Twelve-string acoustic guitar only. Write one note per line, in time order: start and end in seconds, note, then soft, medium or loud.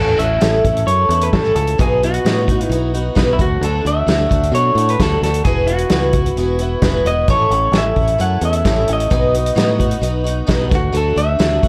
0.00 0.19 A2 medium
0.00 0.18 E3 medium
0.00 0.17 A3 medium
0.00 0.18 C#4 medium
0.00 0.16 E4 medium
0.00 0.16 A4 medium
0.17 0.39 A3 soft
0.17 0.40 C#4 soft
0.17 0.41 E4 soft
0.17 0.41 A4 soft
0.40 0.64 A2 medium
0.40 0.64 E3 medium
0.40 0.64 A3 medium
0.40 0.64 C#4 medium
0.40 0.65 E4 medium
0.40 0.64 A4 medium
0.65 0.89 A3 soft
0.65 0.89 C#4 soft
0.65 0.89 E4 soft
0.65 0.88 A4 soft
0.90 1.12 A3 medium
0.90 1.11 C#4 medium
0.90 1.10 E4 medium
0.90 1.10 A4 medium
1.11 1.32 A3 soft
1.11 1.32 C#4 soft
1.11 1.33 E4 soft
1.11 1.33 A4 medium
1.33 1.56 A2 medium
1.33 1.56 E3 medium
1.33 1.56 A3 medium
1.33 1.56 C#4 medium
1.33 1.55 E4 medium
1.33 1.54 A4 medium
1.55 1.78 A3 soft
1.55 1.79 C#4 soft
1.55 1.79 E4 soft
1.55 1.78 A4 soft
1.78 2.02 B2 medium
1.78 2.02 F#3 medium
1.78 2.02 B3 medium
1.78 2.02 D#4 medium
1.78 2.02 F#4 medium
2.03 2.25 B3 soft
2.03 2.25 D#4 soft
2.03 2.25 F#4 medium
2.25 2.48 B2 medium
2.25 2.48 F#3 medium
2.25 2.48 B3 medium
2.25 2.48 D#4 medium
2.25 2.48 F#4 medium
2.49 2.71 B3 soft
2.49 2.71 D#4 soft
2.49 2.71 F#4 soft
2.71 2.94 F#3 medium
2.71 2.94 B3 medium
2.71 2.93 D#4 medium
2.71 2.93 F#4 medium
2.94 3.15 B3 soft
2.94 3.15 D#4 medium
2.94 3.15 F#4 medium
3.15 3.39 B2 medium
3.15 3.39 F#3 medium
3.15 3.38 B3 medium
3.15 3.38 D#4 medium
3.15 3.37 F#4 medium
3.38 3.62 A3 soft
3.38 3.61 D4 soft
3.38 3.61 F#4 soft
3.62 3.85 D3 medium
3.62 3.86 F#3 medium
3.62 3.86 A3 medium
3.62 3.84 D4 medium
3.62 3.84 F#4 medium
3.85 4.07 A3 soft
3.85 4.07 D4 soft
3.85 4.07 F#4 soft
4.07 4.30 D3 medium
4.07 4.30 F#3 medium
4.07 4.29 A3 medium
4.07 4.29 D4 medium
4.07 4.28 F#4 medium
4.29 4.50 A3 soft
4.29 4.52 D4 soft
4.29 4.52 F#4 soft
4.51 4.75 F#3 medium
4.51 4.76 A3 medium
4.51 4.76 D4 medium
4.51 4.74 F#4 medium
4.75 4.98 A3 soft
4.75 4.99 D4 soft
4.75 4.99 F#4 medium
4.99 5.22 D3 medium
4.99 5.22 F#3 medium
4.99 5.22 A3 medium
4.99 5.23 D4 medium
4.99 5.22 F#4 medium
5.23 5.46 A3 soft
5.23 5.46 D4 soft
5.23 5.45 F#4 medium
5.45 5.68 E3 medium
5.45 5.69 B3 medium
5.45 5.69 E4 medium
5.45 5.67 F#4 medium
5.68 5.90 B3 soft
5.68 5.91 E4 soft
5.68 5.91 F#4 medium
5.92 6.14 E3 medium
5.92 6.14 B3 medium
5.92 6.13 E4 medium
5.92 6.12 F#4 medium
6.13 6.36 B3 soft
6.13 6.37 E4 soft
6.13 6.36 F#4 soft
6.37 6.60 E3 medium
6.37 6.60 B3 medium
6.37 6.60 E4 medium
6.37 6.59 F#4 medium
6.60 6.83 B3 soft
6.60 6.83 E4 soft
6.60 6.83 F#4 medium
6.84 7.06 E3 medium
6.84 7.06 B3 medium
6.84 7.06 E4 medium
6.84 7.04 F#4 medium
7.05 7.29 B3 soft
7.05 7.29 E4 soft
7.05 7.28 F#4 soft
7.29 7.52 A2 medium
7.29 7.51 E3 medium
7.29 7.52 A3 medium
7.29 7.51 C#4 medium
7.29 7.51 E4 medium
7.29 7.50 A4 medium
7.51 7.74 A3 soft
7.51 7.74 C#4 soft
7.51 7.74 E4 soft
7.51 7.74 A4 medium
7.74 7.97 A2 medium
7.74 7.97 E3 medium
7.74 7.96 A3 medium
7.74 7.95 C#4 medium
7.74 7.95 E4 medium
7.74 7.93 A4 medium
7.95 8.17 A3 soft
7.95 8.18 C#4 soft
7.95 8.19 E4 soft
7.95 8.19 A4 soft
8.18 8.42 A3 medium
8.18 8.41 C#4 medium
8.18 8.40 E4 medium
8.18 8.40 A4 medium
8.41 8.64 A3 soft
8.41 8.65 C#4 soft
8.41 8.65 E4 soft
8.41 8.65 A4 soft
8.65 8.88 A2 medium
8.65 8.88 E3 medium
8.65 8.88 A3 medium
8.65 8.88 C#4 medium
8.65 8.88 E4 medium
8.65 8.88 A4 medium
8.89 9.11 A3 soft
8.89 9.10 C#4 soft
8.89 9.11 E4 soft
8.89 9.12 A4 soft
9.10 9.34 B2 medium
9.10 9.34 F#3 medium
9.10 9.34 B3 medium
9.10 9.34 D#4 medium
9.10 9.33 F#4 medium
9.34 9.55 B3 soft
9.34 9.55 D#4 soft
9.34 9.56 F#4 soft
9.55 9.79 B2 medium
9.55 9.80 F#3 medium
9.55 9.80 B3 medium
9.55 9.78 D#4 medium
9.55 9.77 F#4 medium
9.78 10.00 B3 soft
9.78 10.01 D#4 medium
9.78 10.01 F#4 medium
10.01 10.25 F#3 medium
10.01 10.25 B3 medium
10.01 10.24 D#4 medium
10.01 10.23 F#4 medium
10.24 10.46 B3 soft
10.24 10.47 D#4 medium
10.24 10.46 F#4 medium
10.46 10.71 B2 medium
10.46 10.71 F#3 medium
10.46 10.71 B3 medium
10.46 10.69 D#4 medium
10.46 10.68 F#4 medium
10.69 10.91 A3 soft
10.69 10.92 D4 soft
10.69 10.92 F#4 soft
10.92 11.16 D3 medium
10.92 11.16 F#3 medium
10.92 11.16 A3 medium
10.92 11.17 D4 medium
10.92 11.15 F#4 medium
11.16 11.39 A3 soft
11.16 11.39 D4 soft
11.16 11.39 F#4 medium
11.39 11.62 D3 medium
11.39 11.63 F#3 medium
11.39 11.63 A3 medium
11.39 11.62 D4 medium
11.39 11.61 F#4 medium
11.62 11.68 A3 soft
11.62 11.68 D4 soft
11.62 11.68 F#4 medium